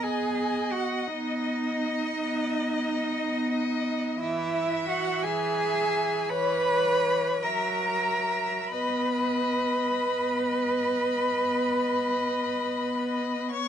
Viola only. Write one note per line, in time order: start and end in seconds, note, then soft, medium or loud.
0.04 0.95 B3 soft
1.08 2.00 B3 soft
2.12 3.05 B3 medium
3.17 4.07 B3 medium
4.19 5.11 E3 medium
5.24 6.17 E3 medium
6.30 7.30 E3 medium
7.43 8.56 F#3 medium
8.72 9.89 B3 soft
10.05 11.21 B3 soft
11.36 12.51 B3 soft
12.66 13.68 B3 soft